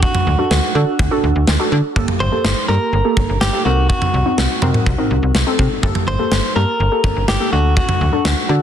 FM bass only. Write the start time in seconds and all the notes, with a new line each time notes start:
0.27 D2
0.51 D2
0.75 D3
0.99 D2
1.24 D2
1.36 D2
1.48 D2
1.72 D3
1.96 G1
2.20 G1
2.44 G1
2.69 G2
2.93 G1
3.17 G1
3.29 G1
3.41 G1
3.65 C2
4.14 C2
4.38 C2
4.62 C3
4.86 C2
5.11 C2
5.23 C2
5.35 C2
5.59 C3
5.83 G1
6.07 G1
6.32 G1
6.56 G2
6.80 G1
7.04 G1
7.16 G1
7.28 G1
7.53 D2
8.01 D2
8.25 D2
8.49 D3